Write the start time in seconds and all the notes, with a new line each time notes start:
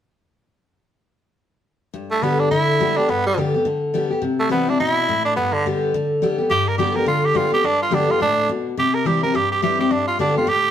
1.94 G2
2.11 A3
2.22 D3 G3 B3 G4
2.39 D4
2.51 D3 E4
2.80 D3 G3 B3 G4
2.97 B3 D4 G4
3.09 G2 B3
3.26 G3
3.38 D3 G3 B3 G4
3.54 B3 G4
3.65 D3
3.94 D3 G3 B3 G4
4.10 B3 G4
4.22 C3
4.40 A3
4.49 E3 G3 B3 C4 E4
4.68 C4 D4 E4
4.80 B2 E4
5.09 A2
5.25 D4
5.36 G2 B3
5.53 D3
5.66 D3 G3 B3 G4
5.94 D3
6.22 D3 G3 B3 G4
6.38 B3 G4
6.50 G2 G4
6.68 A#4
6.78 D3 G3 B3 G4
6.95 B3 G4 A#4
7.06 D3 F4
7.25 G4
7.34 D3 G3 B3 F4 G4
7.52 B3 G4
7.64 G2 D4
7.82 F4
7.91 D3 G3 B3 D4 G4
8.08 B3 F4 G4
8.21 A2 D4
8.49 B2
8.77 C3 G4
8.94 A#4
9.05 E3 G3 C4 E4 G4
9.23 C4 E4 A#4
9.35 G2 G4
9.52 G4
9.62 E3 G3 C4 E4 G4
9.79 C4 E4 G4
9.91 G2 D4
10.08 F4
10.19 D3 G3 B3 D4 G4
10.36 B3 F4 G4
10.47 A2 G4